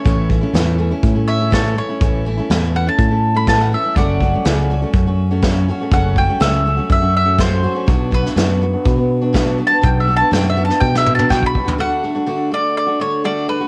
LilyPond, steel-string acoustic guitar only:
\new Staff \with { instrumentName = "Steel-string acoustic guitar" } { \time 4/4 \key a \major \tempo 4 = 123 <a, e a cis' e'>8 <e a cis' e'>16 <a cis' e'>16 <a, e a cis' e'>8 <e a cis' e'>16 <a cis' e'>8 <a cis' e'>8 <a cis' e'>16 <a, e a cis' e'>8 <e a cis' e'>16 <a cis' e'>16 | <a, e a cis' e'>8 <e a cis' e'>16 <a cis' e'>16 <a, e a cis' e'>8 <e a cis' e'>16 <a cis' e'>8 <a cis' e'>8 <a cis' e'>16 <a, e a cis' e'>8 <e a cis' e'>16 <a cis' e'>16 | <fis, cis fis a cis' fis'>8 <fis a cis' fis'>16 <fis a cis' fis'>16 <fis, cis fis a cis' fis'>8 <fis a cis' fis'>16 <fis a cis' fis'>8 <fis a cis' fis'>8 <fis a cis' fis'>16 <fis, cis fis a cis' fis'>8 <fis a cis' fis'>16 <fis a cis' fis'>16 | <fis, cis fis a cis' fis'>8 <fis a cis' fis'>16 <fis a cis' fis'>16 <fis, cis fis a cis' fis'>8 <fis a cis' fis'>16 <fis a cis' fis'>8 <fis a cis' fis'>8 <fis a cis' fis'>16 <fis, cis fis a cis' fis'>8 <fis a cis' fis'>16 <fis a cis' fis'>16 |
<b, fis b d' fis'>8 <fis b d' fis'>16 <b d' fis'>16 <b, fis b d' fis'>8 <fis b d' fis'>16 <b d' fis'>8 <b d' fis'>8 <b d' fis'>16 <b, fis b d' fis'>8 <fis b d' fis'>16 <b d' fis'>16 | <b, fis b d' fis'>8 <fis b d' fis'>16 <b d' fis'>16 <b, fis b d' fis'>8 <fis b d' fis'>16 <b d' fis'>8 <b d' fis'>8 <b d' fis'>16 <b, fis b d' fis'>8 <fis b d' fis'>16 <b d' fis'>16 | <d a d' fis'>8 <d a d' fis'>16 <a d' fis'>16 <d a d' fis'>8 <d a d' fis'>8. <a d' fis'>16 <d a d' fis'>8 <d a d' fis'>8 <d a d' fis'>16 <a d' fis'>16 | }